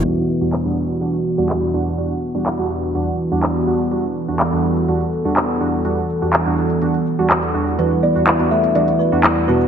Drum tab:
CC |x---------------|----------------|----------------|----------------|
HH |x---xx-xxx--x---|x---xx-xxx--x---|x---xx-xxx--x---|x---xx-xxx--xx--|
SH |------x---xx--xx|x-xx--xxx-xx--xx|x-xxx-xxx-xxx-xx|x-xxx-xxx-xxx-xx|
CP |----x-------x---|----x-------x---|----x-------x---|----x-------x---|

CC |----------------|
HH |x---xx-xxx--x---|
SH |x-xxx-xxx-xxx-xx|
CP |----x-------x---|